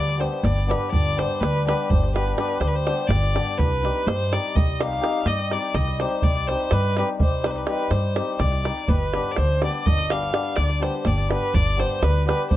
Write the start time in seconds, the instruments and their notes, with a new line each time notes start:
Already playing: upright bass D2, hammered dulcimer G3, fiddle D5
0.09 davul high
0.18 hammered dulcimer G3 B3 D4 G4, fiddle C5, davul high
0.33 davul high
0.43 upright bass G1, fiddle D5, davul high, davul low
0.58 davul high
0.67 hammered dulcimer G3 B3 D4 G4, fiddle B4
0.71 davul high
0.91 upright bass G1, fiddle D5, davul low
1.17 hammered dulcimer G3 B3 D4 G4, fiddle C5, davul high
1.40 upright bass D2, fiddle B4, davul high
1.66 hammered dulcimer G3 B3 D4 G4, fiddle B4, davul high
1.89 upright bass G1, fiddle C5, davul low
2.03 davul high
2.14 hammered dulcimer G3 B3 D4 G4, fiddle B4, davul high
2.28 davul high
2.37 hammered dulcimer G3 B3 D4 G4, fiddle B4, davul high
2.60 upright bass D2, fiddle C5, davul high
2.67 fiddle B4
2.74 fiddle C5, davul high
2.85 hammered dulcimer G3 B3 D4 G4, davul high
2.99 davul high
3.07 upright bass G1, fiddle D5, davul high, davul low
3.23 davul high
3.34 hammered dulcimer G3 B3 D4 G4, davul high
3.58 upright bass C2, fiddle B4, davul low
3.83 hammered dulcimer G3 C4 D#4 G4, davul high
4.07 upright bass G2, fiddle C5, davul high
4.32 hammered dulcimer G3 C4 D#4 G4, fiddle D5, davul high
4.55 upright bass C2, fiddle D#5, davul low
4.79 hammered dulcimer G3 C4 D#4 G4, fiddle F5, davul high
4.93 davul high
5.01 hammered dulcimer G3 C4 D#4 G4, davul high
5.25 upright bass G2, fiddle D#5, davul high
5.39 davul high
5.50 hammered dulcimer G3 C4 D#4 G4, fiddle D5, davul high
5.62 davul high
5.74 upright bass C2, fiddle D#5, davul high, davul low
5.88 davul high
6.00 hammered dulcimer G3 C4 D#4 G4, fiddle C5, davul high
6.22 upright bass C2, fiddle D5, davul low
6.36 davul high
6.48 hammered dulcimer G3 C4 D#4 G4, fiddle C5, davul high
6.60 davul high
6.71 upright bass G2, fiddle B4, davul high
6.85 davul high
6.97 hammered dulcimer G3 C4 D#4 G4, fiddle B4, davul high
7.09 davul high
7.19 upright bass C2, fiddle C5, davul low
7.43 hammered dulcimer G3 C4 D#4 G4, fiddle B4, davul high
7.50 fiddle C5
7.56 fiddle B4, davul high
7.67 hammered dulcimer G3 C4 D#4 G4, fiddle B4, davul high
7.80 davul high
7.90 upright bass G2, fiddle C5, davul high
8.16 hammered dulcimer G3 C4 D#4 G4, davul high
8.39 upright bass C2, fiddle D5, davul high, davul low
8.52 davul high
8.64 hammered dulcimer G3 C4 D#4 G4, davul high
8.88 upright bass G1, fiddle B4, davul low
9.13 hammered dulcimer G3 B3 D4 G4, davul high
9.31 fiddle D5
9.36 upright bass D2, fiddle C5, davul high
9.61 hammered dulcimer G3 B3 D4 G4, fiddle D5, davul high
9.86 upright bass G1, fiddle D#5, davul low
9.98 davul high
10.10 hammered dulcimer G3 B3 D4 G4, fiddle F5, davul high
10.23 davul high
10.33 hammered dulcimer G3 B3 D4 G4, davul high
10.56 upright bass D2, fiddle D5, davul high
10.70 davul high
10.80 hammered dulcimer G3 B3 D4 G4, fiddle C5, davul high
10.94 davul high
11.05 upright bass G1, fiddle D5, davul high, davul low
11.18 davul high
11.28 hammered dulcimer G3 B3 D4 G4, fiddle B4, davul high
11.54 upright bass G1, fiddle D5, davul low
11.77 hammered dulcimer G3 B3 D4 G4, fiddle C5, davul high
12.02 upright bass D2, fiddle B4, davul high
12.26 hammered dulcimer G3 B3 D4 G4, fiddle B4, davul high
12.50 upright bass G1, fiddle C5, davul low